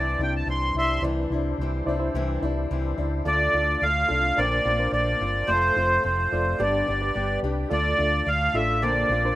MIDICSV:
0, 0, Header, 1, 6, 480
1, 0, Start_track
1, 0, Tempo, 556586
1, 890, Time_signature, 4, 2, 24, 8
1, 8067, End_track
2, 0, Start_track
2, 0, Title_t, "Accordion"
2, 0, Program_c, 0, 21
2, 0, Note_on_c, 0, 74, 94
2, 182, Note_off_c, 0, 74, 0
2, 195, Note_on_c, 0, 79, 93
2, 295, Note_off_c, 0, 79, 0
2, 310, Note_on_c, 0, 81, 80
2, 412, Note_off_c, 0, 81, 0
2, 431, Note_on_c, 0, 84, 97
2, 654, Note_off_c, 0, 84, 0
2, 673, Note_on_c, 0, 76, 84
2, 675, Note_on_c, 0, 84, 100
2, 886, Note_off_c, 0, 76, 0
2, 896, Note_off_c, 0, 84, 0
2, 2823, Note_on_c, 0, 74, 105
2, 3301, Note_on_c, 0, 77, 120
2, 3310, Note_off_c, 0, 74, 0
2, 3773, Note_on_c, 0, 74, 101
2, 3789, Note_off_c, 0, 77, 0
2, 4239, Note_off_c, 0, 74, 0
2, 4252, Note_on_c, 0, 74, 94
2, 4720, Note_on_c, 0, 72, 115
2, 4744, Note_off_c, 0, 74, 0
2, 5204, Note_off_c, 0, 72, 0
2, 5217, Note_on_c, 0, 72, 87
2, 5706, Note_off_c, 0, 72, 0
2, 5706, Note_on_c, 0, 74, 92
2, 6382, Note_off_c, 0, 74, 0
2, 6660, Note_on_c, 0, 74, 107
2, 7141, Note_on_c, 0, 77, 108
2, 7147, Note_off_c, 0, 74, 0
2, 7372, Note_on_c, 0, 76, 107
2, 7381, Note_off_c, 0, 77, 0
2, 7606, Note_on_c, 0, 74, 97
2, 7616, Note_off_c, 0, 76, 0
2, 8067, Note_off_c, 0, 74, 0
2, 8067, End_track
3, 0, Start_track
3, 0, Title_t, "Reed electric piano"
3, 0, Program_c, 1, 4
3, 883, Note_on_c, 1, 64, 71
3, 884, Note_on_c, 1, 72, 61
3, 888, Note_on_c, 1, 74, 80
3, 1335, Note_off_c, 1, 64, 0
3, 1336, Note_off_c, 1, 72, 0
3, 1338, Note_off_c, 1, 74, 0
3, 1606, Note_on_c, 1, 64, 84
3, 1611, Note_on_c, 1, 74, 98
3, 1613, Note_on_c, 1, 72, 77
3, 1683, Note_off_c, 1, 64, 0
3, 1686, Note_off_c, 1, 72, 0
3, 1686, Note_off_c, 1, 74, 0
3, 1722, Note_on_c, 1, 64, 82
3, 1724, Note_on_c, 1, 72, 80
3, 1726, Note_on_c, 1, 76, 83
3, 2324, Note_off_c, 1, 64, 0
3, 2325, Note_off_c, 1, 72, 0
3, 2326, Note_off_c, 1, 76, 0
3, 2802, Note_on_c, 1, 65, 72
3, 2807, Note_on_c, 1, 69, 63
3, 2807, Note_on_c, 1, 74, 78
3, 3254, Note_off_c, 1, 65, 0
3, 3257, Note_off_c, 1, 69, 0
3, 3257, Note_off_c, 1, 74, 0
3, 3522, Note_on_c, 1, 65, 69
3, 3526, Note_on_c, 1, 69, 65
3, 3528, Note_on_c, 1, 77, 75
3, 3765, Note_off_c, 1, 65, 0
3, 3768, Note_off_c, 1, 69, 0
3, 3769, Note_off_c, 1, 77, 0
3, 3778, Note_on_c, 1, 62, 74
3, 3778, Note_on_c, 1, 70, 67
3, 3783, Note_on_c, 1, 72, 82
3, 4061, Note_off_c, 1, 62, 0
3, 4061, Note_off_c, 1, 70, 0
3, 4064, Note_off_c, 1, 72, 0
3, 4130, Note_on_c, 1, 62, 66
3, 4133, Note_on_c, 1, 70, 59
3, 4136, Note_on_c, 1, 72, 86
3, 4503, Note_off_c, 1, 62, 0
3, 4504, Note_off_c, 1, 70, 0
3, 4506, Note_off_c, 1, 72, 0
3, 4729, Note_on_c, 1, 65, 72
3, 4732, Note_on_c, 1, 69, 70
3, 4733, Note_on_c, 1, 72, 76
3, 5177, Note_off_c, 1, 65, 0
3, 5178, Note_off_c, 1, 69, 0
3, 5179, Note_off_c, 1, 72, 0
3, 5450, Note_on_c, 1, 65, 72
3, 5452, Note_on_c, 1, 69, 67
3, 5457, Note_on_c, 1, 74, 81
3, 5681, Note_off_c, 1, 74, 0
3, 5688, Note_on_c, 1, 67, 79
3, 5689, Note_off_c, 1, 65, 0
3, 5689, Note_off_c, 1, 69, 0
3, 5691, Note_on_c, 1, 74, 88
3, 5697, Note_on_c, 1, 71, 69
3, 5975, Note_off_c, 1, 67, 0
3, 5977, Note_off_c, 1, 74, 0
3, 5980, Note_off_c, 1, 71, 0
3, 6049, Note_on_c, 1, 71, 57
3, 6053, Note_on_c, 1, 74, 83
3, 6054, Note_on_c, 1, 67, 69
3, 6422, Note_off_c, 1, 71, 0
3, 6424, Note_off_c, 1, 67, 0
3, 6424, Note_off_c, 1, 74, 0
3, 6639, Note_on_c, 1, 65, 71
3, 6642, Note_on_c, 1, 69, 76
3, 6642, Note_on_c, 1, 74, 77
3, 7092, Note_off_c, 1, 65, 0
3, 7093, Note_off_c, 1, 69, 0
3, 7093, Note_off_c, 1, 74, 0
3, 7372, Note_on_c, 1, 65, 71
3, 7376, Note_on_c, 1, 69, 65
3, 7378, Note_on_c, 1, 77, 87
3, 7609, Note_off_c, 1, 65, 0
3, 7611, Note_off_c, 1, 69, 0
3, 7612, Note_off_c, 1, 77, 0
3, 7612, Note_on_c, 1, 70, 67
3, 7615, Note_on_c, 1, 62, 76
3, 7616, Note_on_c, 1, 72, 80
3, 7897, Note_off_c, 1, 70, 0
3, 7899, Note_off_c, 1, 62, 0
3, 7899, Note_off_c, 1, 72, 0
3, 7975, Note_on_c, 1, 70, 65
3, 7980, Note_on_c, 1, 72, 87
3, 7981, Note_on_c, 1, 62, 74
3, 8067, Note_off_c, 1, 62, 0
3, 8067, Note_off_c, 1, 70, 0
3, 8067, Note_off_c, 1, 72, 0
3, 8067, End_track
4, 0, Start_track
4, 0, Title_t, "Tonewheel organ"
4, 0, Program_c, 2, 16
4, 0, Note_on_c, 2, 60, 70
4, 0, Note_on_c, 2, 62, 67
4, 0, Note_on_c, 2, 64, 73
4, 876, Note_off_c, 2, 60, 0
4, 878, Note_off_c, 2, 62, 0
4, 880, Note_off_c, 2, 64, 0
4, 894, Note_on_c, 2, 62, 63
4, 897, Note_on_c, 2, 64, 69
4, 897, Note_on_c, 2, 72, 68
4, 2784, Note_off_c, 2, 62, 0
4, 2792, Note_on_c, 2, 65, 68
4, 2794, Note_off_c, 2, 64, 0
4, 2794, Note_off_c, 2, 72, 0
4, 2795, Note_on_c, 2, 62, 69
4, 2795, Note_on_c, 2, 69, 63
4, 3750, Note_off_c, 2, 65, 0
4, 3752, Note_off_c, 2, 62, 0
4, 3752, Note_off_c, 2, 69, 0
4, 3761, Note_on_c, 2, 70, 67
4, 3763, Note_on_c, 2, 62, 65
4, 3769, Note_on_c, 2, 72, 69
4, 4714, Note_off_c, 2, 70, 0
4, 4715, Note_off_c, 2, 62, 0
4, 4718, Note_off_c, 2, 72, 0
4, 4724, Note_on_c, 2, 65, 67
4, 4726, Note_on_c, 2, 69, 70
4, 4733, Note_on_c, 2, 72, 64
4, 5673, Note_on_c, 2, 67, 63
4, 5673, Note_on_c, 2, 71, 73
4, 5676, Note_off_c, 2, 65, 0
4, 5677, Note_off_c, 2, 69, 0
4, 5677, Note_on_c, 2, 74, 67
4, 5680, Note_off_c, 2, 72, 0
4, 6626, Note_off_c, 2, 74, 0
4, 6630, Note_off_c, 2, 67, 0
4, 6630, Note_off_c, 2, 71, 0
4, 6631, Note_on_c, 2, 65, 71
4, 6635, Note_on_c, 2, 69, 77
4, 6637, Note_on_c, 2, 74, 75
4, 7589, Note_off_c, 2, 65, 0
4, 7591, Note_off_c, 2, 69, 0
4, 7592, Note_off_c, 2, 74, 0
4, 7602, Note_on_c, 2, 70, 74
4, 7602, Note_on_c, 2, 72, 74
4, 7608, Note_on_c, 2, 62, 76
4, 8067, Note_off_c, 2, 62, 0
4, 8067, Note_off_c, 2, 70, 0
4, 8067, Note_off_c, 2, 72, 0
4, 8067, End_track
5, 0, Start_track
5, 0, Title_t, "Steel-string acoustic guitar"
5, 0, Program_c, 3, 25
5, 0, Note_on_c, 3, 48, 70
5, 0, Note_on_c, 3, 52, 74
5, 0, Note_on_c, 3, 55, 69
5, 0, Note_on_c, 3, 62, 82
5, 0, Note_on_c, 3, 64, 87
5, 166, Note_off_c, 3, 64, 0
5, 173, Note_off_c, 3, 62, 0
5, 176, Note_off_c, 3, 48, 0
5, 176, Note_off_c, 3, 52, 0
5, 177, Note_on_c, 3, 64, 60
5, 178, Note_off_c, 3, 55, 0
5, 183, Note_on_c, 3, 62, 52
5, 189, Note_on_c, 3, 55, 46
5, 406, Note_off_c, 3, 55, 0
5, 408, Note_on_c, 3, 52, 63
5, 412, Note_off_c, 3, 62, 0
5, 414, Note_off_c, 3, 64, 0
5, 417, Note_on_c, 3, 55, 67
5, 422, Note_on_c, 3, 62, 56
5, 427, Note_on_c, 3, 64, 59
5, 649, Note_off_c, 3, 52, 0
5, 650, Note_off_c, 3, 64, 0
5, 654, Note_off_c, 3, 55, 0
5, 655, Note_off_c, 3, 62, 0
5, 660, Note_on_c, 3, 64, 54
5, 665, Note_on_c, 3, 62, 53
5, 674, Note_on_c, 3, 55, 44
5, 890, Note_off_c, 3, 55, 0
5, 894, Note_off_c, 3, 62, 0
5, 895, Note_off_c, 3, 64, 0
5, 899, Note_on_c, 3, 48, 84
5, 899, Note_on_c, 3, 52, 83
5, 900, Note_on_c, 3, 55, 77
5, 904, Note_on_c, 3, 64, 86
5, 905, Note_on_c, 3, 62, 83
5, 1126, Note_off_c, 3, 64, 0
5, 1134, Note_off_c, 3, 52, 0
5, 1135, Note_off_c, 3, 48, 0
5, 1135, Note_off_c, 3, 55, 0
5, 1136, Note_on_c, 3, 64, 55
5, 1138, Note_off_c, 3, 62, 0
5, 1152, Note_on_c, 3, 62, 53
5, 1160, Note_on_c, 3, 55, 49
5, 1373, Note_off_c, 3, 64, 0
5, 1381, Note_off_c, 3, 62, 0
5, 1382, Note_off_c, 3, 55, 0
5, 1391, Note_on_c, 3, 52, 70
5, 1392, Note_on_c, 3, 55, 66
5, 1398, Note_on_c, 3, 62, 71
5, 1406, Note_on_c, 3, 64, 67
5, 1613, Note_off_c, 3, 64, 0
5, 1621, Note_off_c, 3, 52, 0
5, 1621, Note_off_c, 3, 55, 0
5, 1623, Note_on_c, 3, 64, 66
5, 1624, Note_off_c, 3, 62, 0
5, 1635, Note_on_c, 3, 62, 59
5, 1647, Note_on_c, 3, 55, 50
5, 1851, Note_off_c, 3, 55, 0
5, 1853, Note_on_c, 3, 48, 83
5, 1855, Note_off_c, 3, 62, 0
5, 1855, Note_off_c, 3, 64, 0
5, 1857, Note_on_c, 3, 52, 90
5, 1861, Note_on_c, 3, 55, 82
5, 1865, Note_on_c, 3, 62, 91
5, 1865, Note_on_c, 3, 64, 100
5, 2082, Note_off_c, 3, 64, 0
5, 2091, Note_off_c, 3, 62, 0
5, 2092, Note_off_c, 3, 48, 0
5, 2092, Note_on_c, 3, 64, 73
5, 2093, Note_off_c, 3, 52, 0
5, 2096, Note_off_c, 3, 55, 0
5, 2101, Note_on_c, 3, 62, 66
5, 2110, Note_on_c, 3, 55, 60
5, 2325, Note_off_c, 3, 55, 0
5, 2331, Note_off_c, 3, 64, 0
5, 2333, Note_off_c, 3, 62, 0
5, 2335, Note_on_c, 3, 55, 66
5, 2338, Note_on_c, 3, 52, 66
5, 2343, Note_on_c, 3, 62, 74
5, 2351, Note_on_c, 3, 64, 73
5, 2556, Note_off_c, 3, 64, 0
5, 2561, Note_off_c, 3, 62, 0
5, 2567, Note_off_c, 3, 55, 0
5, 2567, Note_on_c, 3, 64, 59
5, 2571, Note_on_c, 3, 62, 51
5, 2574, Note_off_c, 3, 52, 0
5, 2577, Note_on_c, 3, 55, 53
5, 2802, Note_off_c, 3, 62, 0
5, 2805, Note_on_c, 3, 50, 79
5, 2807, Note_off_c, 3, 55, 0
5, 2808, Note_off_c, 3, 64, 0
5, 2811, Note_on_c, 3, 57, 80
5, 2813, Note_on_c, 3, 62, 76
5, 2823, Note_on_c, 3, 65, 92
5, 3042, Note_off_c, 3, 65, 0
5, 3047, Note_off_c, 3, 50, 0
5, 3050, Note_off_c, 3, 57, 0
5, 3051, Note_off_c, 3, 62, 0
5, 3053, Note_on_c, 3, 65, 49
5, 3070, Note_on_c, 3, 57, 49
5, 3070, Note_on_c, 3, 62, 45
5, 3291, Note_off_c, 3, 65, 0
5, 3292, Note_off_c, 3, 57, 0
5, 3300, Note_off_c, 3, 62, 0
5, 3302, Note_on_c, 3, 50, 63
5, 3302, Note_on_c, 3, 57, 56
5, 3310, Note_on_c, 3, 62, 68
5, 3316, Note_on_c, 3, 65, 67
5, 3531, Note_off_c, 3, 65, 0
5, 3535, Note_off_c, 3, 62, 0
5, 3536, Note_off_c, 3, 50, 0
5, 3536, Note_off_c, 3, 57, 0
5, 3541, Note_on_c, 3, 65, 60
5, 3545, Note_on_c, 3, 62, 50
5, 3554, Note_on_c, 3, 57, 41
5, 3775, Note_off_c, 3, 65, 0
5, 3777, Note_off_c, 3, 62, 0
5, 3781, Note_off_c, 3, 57, 0
5, 3781, Note_on_c, 3, 46, 74
5, 3786, Note_on_c, 3, 50, 82
5, 3786, Note_on_c, 3, 58, 83
5, 3791, Note_on_c, 3, 60, 79
5, 3793, Note_on_c, 3, 65, 79
5, 3998, Note_off_c, 3, 65, 0
5, 4008, Note_on_c, 3, 65, 61
5, 4010, Note_off_c, 3, 60, 0
5, 4015, Note_off_c, 3, 46, 0
5, 4017, Note_off_c, 3, 50, 0
5, 4017, Note_off_c, 3, 58, 0
5, 4021, Note_on_c, 3, 60, 56
5, 4033, Note_on_c, 3, 58, 52
5, 4244, Note_off_c, 3, 58, 0
5, 4246, Note_on_c, 3, 50, 53
5, 4248, Note_off_c, 3, 60, 0
5, 4248, Note_off_c, 3, 65, 0
5, 4255, Note_on_c, 3, 58, 63
5, 4259, Note_on_c, 3, 60, 68
5, 4260, Note_on_c, 3, 65, 63
5, 4486, Note_off_c, 3, 65, 0
5, 4487, Note_off_c, 3, 50, 0
5, 4491, Note_off_c, 3, 58, 0
5, 4493, Note_off_c, 3, 60, 0
5, 4496, Note_on_c, 3, 65, 56
5, 4503, Note_on_c, 3, 60, 52
5, 4510, Note_on_c, 3, 58, 39
5, 4713, Note_off_c, 3, 60, 0
5, 4713, Note_off_c, 3, 65, 0
5, 4717, Note_on_c, 3, 53, 85
5, 4719, Note_off_c, 3, 58, 0
5, 4722, Note_on_c, 3, 57, 80
5, 4723, Note_on_c, 3, 60, 94
5, 4723, Note_on_c, 3, 65, 84
5, 4959, Note_off_c, 3, 65, 0
5, 4963, Note_off_c, 3, 53, 0
5, 4965, Note_off_c, 3, 57, 0
5, 4966, Note_off_c, 3, 60, 0
5, 4969, Note_on_c, 3, 65, 56
5, 4979, Note_on_c, 3, 60, 52
5, 4981, Note_on_c, 3, 57, 50
5, 5194, Note_off_c, 3, 57, 0
5, 5201, Note_off_c, 3, 60, 0
5, 5202, Note_on_c, 3, 53, 61
5, 5204, Note_on_c, 3, 57, 69
5, 5207, Note_off_c, 3, 65, 0
5, 5211, Note_on_c, 3, 60, 63
5, 5217, Note_on_c, 3, 65, 62
5, 5445, Note_off_c, 3, 53, 0
5, 5446, Note_off_c, 3, 57, 0
5, 5446, Note_off_c, 3, 65, 0
5, 5449, Note_off_c, 3, 60, 0
5, 5456, Note_on_c, 3, 65, 54
5, 5461, Note_on_c, 3, 60, 54
5, 5467, Note_on_c, 3, 57, 49
5, 5680, Note_on_c, 3, 43, 78
5, 5685, Note_off_c, 3, 60, 0
5, 5689, Note_on_c, 3, 62, 69
5, 5690, Note_off_c, 3, 57, 0
5, 5690, Note_on_c, 3, 50, 91
5, 5691, Note_on_c, 3, 55, 79
5, 5692, Note_off_c, 3, 65, 0
5, 5694, Note_on_c, 3, 59, 81
5, 5698, Note_on_c, 3, 67, 84
5, 5913, Note_off_c, 3, 67, 0
5, 5923, Note_off_c, 3, 62, 0
5, 5923, Note_on_c, 3, 67, 61
5, 5924, Note_off_c, 3, 43, 0
5, 5926, Note_off_c, 3, 59, 0
5, 5928, Note_off_c, 3, 50, 0
5, 5929, Note_off_c, 3, 55, 0
5, 5934, Note_on_c, 3, 62, 54
5, 5936, Note_on_c, 3, 59, 57
5, 5943, Note_on_c, 3, 55, 53
5, 6153, Note_off_c, 3, 55, 0
5, 6161, Note_off_c, 3, 59, 0
5, 6163, Note_off_c, 3, 62, 0
5, 6163, Note_on_c, 3, 55, 62
5, 6165, Note_off_c, 3, 67, 0
5, 6171, Note_on_c, 3, 59, 67
5, 6173, Note_on_c, 3, 62, 56
5, 6183, Note_on_c, 3, 67, 64
5, 6403, Note_off_c, 3, 67, 0
5, 6405, Note_off_c, 3, 55, 0
5, 6406, Note_off_c, 3, 62, 0
5, 6409, Note_off_c, 3, 59, 0
5, 6413, Note_on_c, 3, 67, 66
5, 6417, Note_on_c, 3, 62, 66
5, 6420, Note_on_c, 3, 59, 47
5, 6422, Note_on_c, 3, 55, 55
5, 6642, Note_off_c, 3, 55, 0
5, 6642, Note_off_c, 3, 62, 0
5, 6645, Note_on_c, 3, 50, 84
5, 6648, Note_off_c, 3, 59, 0
5, 6649, Note_off_c, 3, 67, 0
5, 6651, Note_on_c, 3, 57, 90
5, 6652, Note_on_c, 3, 62, 86
5, 6653, Note_on_c, 3, 65, 94
5, 6873, Note_off_c, 3, 65, 0
5, 6882, Note_off_c, 3, 62, 0
5, 6884, Note_on_c, 3, 65, 58
5, 6886, Note_off_c, 3, 50, 0
5, 6889, Note_off_c, 3, 57, 0
5, 6892, Note_on_c, 3, 62, 54
5, 6903, Note_on_c, 3, 57, 43
5, 7119, Note_off_c, 3, 57, 0
5, 7125, Note_off_c, 3, 65, 0
5, 7126, Note_on_c, 3, 50, 70
5, 7129, Note_off_c, 3, 62, 0
5, 7129, Note_on_c, 3, 57, 71
5, 7139, Note_on_c, 3, 62, 62
5, 7144, Note_on_c, 3, 65, 69
5, 7355, Note_off_c, 3, 65, 0
5, 7365, Note_on_c, 3, 65, 57
5, 7366, Note_off_c, 3, 50, 0
5, 7367, Note_off_c, 3, 62, 0
5, 7368, Note_off_c, 3, 57, 0
5, 7377, Note_on_c, 3, 62, 57
5, 7383, Note_on_c, 3, 57, 43
5, 7606, Note_off_c, 3, 65, 0
5, 7607, Note_on_c, 3, 50, 81
5, 7609, Note_on_c, 3, 46, 73
5, 7612, Note_off_c, 3, 57, 0
5, 7612, Note_off_c, 3, 62, 0
5, 7615, Note_on_c, 3, 58, 91
5, 7616, Note_on_c, 3, 60, 80
5, 7621, Note_on_c, 3, 65, 90
5, 7847, Note_off_c, 3, 50, 0
5, 7847, Note_off_c, 3, 65, 0
5, 7848, Note_off_c, 3, 46, 0
5, 7849, Note_off_c, 3, 60, 0
5, 7851, Note_off_c, 3, 58, 0
5, 7857, Note_on_c, 3, 65, 62
5, 7860, Note_on_c, 3, 60, 57
5, 7869, Note_on_c, 3, 58, 53
5, 8067, Note_off_c, 3, 58, 0
5, 8067, Note_off_c, 3, 60, 0
5, 8067, Note_off_c, 3, 65, 0
5, 8067, End_track
6, 0, Start_track
6, 0, Title_t, "Fingered electric bass"
6, 0, Program_c, 4, 33
6, 0, Note_on_c, 4, 36, 86
6, 139, Note_off_c, 4, 36, 0
6, 164, Note_on_c, 4, 36, 102
6, 380, Note_off_c, 4, 36, 0
6, 399, Note_on_c, 4, 36, 91
6, 617, Note_off_c, 4, 36, 0
6, 640, Note_on_c, 4, 36, 90
6, 858, Note_off_c, 4, 36, 0
6, 876, Note_on_c, 4, 36, 95
6, 1070, Note_off_c, 4, 36, 0
6, 1123, Note_on_c, 4, 36, 80
6, 1315, Note_off_c, 4, 36, 0
6, 1365, Note_on_c, 4, 36, 83
6, 1556, Note_off_c, 4, 36, 0
6, 1606, Note_on_c, 4, 36, 77
6, 1796, Note_off_c, 4, 36, 0
6, 1846, Note_on_c, 4, 36, 89
6, 2036, Note_off_c, 4, 36, 0
6, 2088, Note_on_c, 4, 36, 99
6, 2278, Note_off_c, 4, 36, 0
6, 2335, Note_on_c, 4, 36, 103
6, 2522, Note_off_c, 4, 36, 0
6, 2569, Note_on_c, 4, 37, 86
6, 2758, Note_off_c, 4, 37, 0
6, 2806, Note_on_c, 4, 38, 89
6, 2987, Note_off_c, 4, 38, 0
6, 3049, Note_on_c, 4, 38, 67
6, 3229, Note_off_c, 4, 38, 0
6, 3292, Note_on_c, 4, 38, 87
6, 3471, Note_off_c, 4, 38, 0
6, 3534, Note_on_c, 4, 36, 79
6, 3711, Note_off_c, 4, 36, 0
6, 3775, Note_on_c, 4, 34, 89
6, 3952, Note_off_c, 4, 34, 0
6, 4012, Note_on_c, 4, 34, 91
6, 4190, Note_off_c, 4, 34, 0
6, 4245, Note_on_c, 4, 34, 94
6, 4426, Note_off_c, 4, 34, 0
6, 4488, Note_on_c, 4, 31, 84
6, 4668, Note_off_c, 4, 31, 0
6, 4727, Note_on_c, 4, 29, 92
6, 4907, Note_off_c, 4, 29, 0
6, 4968, Note_on_c, 4, 29, 82
6, 5148, Note_off_c, 4, 29, 0
6, 5212, Note_on_c, 4, 29, 89
6, 5390, Note_off_c, 4, 29, 0
6, 5452, Note_on_c, 4, 29, 84
6, 5630, Note_off_c, 4, 29, 0
6, 5688, Note_on_c, 4, 31, 91
6, 5867, Note_off_c, 4, 31, 0
6, 5937, Note_on_c, 4, 31, 104
6, 6113, Note_off_c, 4, 31, 0
6, 6170, Note_on_c, 4, 31, 89
6, 6349, Note_off_c, 4, 31, 0
6, 6406, Note_on_c, 4, 36, 84
6, 6586, Note_off_c, 4, 36, 0
6, 6650, Note_on_c, 4, 38, 84
6, 6828, Note_off_c, 4, 38, 0
6, 6889, Note_on_c, 4, 38, 89
6, 7068, Note_off_c, 4, 38, 0
6, 7127, Note_on_c, 4, 38, 101
6, 7307, Note_off_c, 4, 38, 0
6, 7361, Note_on_c, 4, 33, 92
6, 7608, Note_off_c, 4, 33, 0
6, 7608, Note_on_c, 4, 34, 99
6, 7787, Note_off_c, 4, 34, 0
6, 7841, Note_on_c, 4, 34, 101
6, 8023, Note_off_c, 4, 34, 0
6, 8067, End_track
0, 0, End_of_file